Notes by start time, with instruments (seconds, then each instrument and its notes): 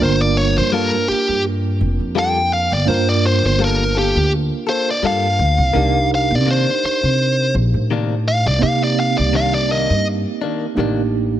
Already playing: tine electric piano A#3
0.00 upright bass G1, tine electric piano D4 F4 A#4, lead electric guitar C5
0.21 lead electric guitar D5
0.37 lead electric guitar C#5
0.57 upright bass G2, lead electric guitar C5
0.72 clean electric guitar G3 A#3 F4 A4, lead electric guitar A#4
1.08 lead electric guitar G4, muted upright bass stroke
1.29 upright bass G2
1.81 upright bass F1
2.00 upright bass F2
2.15 clean electric guitar G3 A#3 F4 A4, lead electric guitar G5
2.53 lead electric guitar F5
2.72 upright bass G1, lead electric guitar D5
2.85 upright bass G2, tine electric piano A#3 D4 F4, lead electric guitar C5
2.89 tine electric piano A#4
3.09 lead electric guitar D5
3.26 lead electric guitar C5
3.43 upright bass G1, lead electric guitar C5
3.59 clean electric guitar G3 A#3 F4 A4
3.64 lead electric guitar A#4
3.95 clean electric guitar A#3 F4 A4, lead electric guitar G4
4.15 upright bass D2
4.67 clean electric guitar A#3 F4 A4, lead electric guitar C5
4.91 lead electric guitar D5
5.02 upright bass G2, clean electric guitar G3 A#3 F4 A4
5.07 lead electric guitar F5
5.39 upright bass D2
5.58 upright bass C2
5.73 upright bass C2, clean electric guitar C3 D#3 A#3 D4, tine electric piano D4 D#4 G4 A#4
6.15 lead electric guitar F5
6.31 upright bass C3
6.35 lead electric guitar D5
6.46 clean electric guitar C3 D#3 A#3 D4
6.51 lead electric guitar C5
6.83 lead electric guitar C5, muted upright bass stroke
7.03 upright bass C3
7.54 upright bass A#1
7.74 upright bass A2
7.91 clean electric guitar C3 D#3 A#3 D4
8.28 lead electric guitar F5
8.46 upright bass C2, lead electric guitar D5
8.59 upright bass C3, tine electric piano A#3 C4 D#4
8.63 tine electric piano G4, lead electric guitar F5
8.84 lead electric guitar D5
9.00 lead electric guitar F5
9.18 upright bass C2, lead electric guitar D5
9.33 clean electric guitar C3 D#3 A#3 D4, lead electric guitar F5
9.54 lead electric guitar D5
9.69 clean electric guitar D#3 A#3 D4, lead electric guitar D#5
9.90 upright bass G2
10.41 clean electric guitar D#3 A#3 D4
10.75 upright bass A1, clean electric guitar C3 D#3, tine electric piano A#3 D4 D#4 G4
10.79 clean electric guitar A#3 D4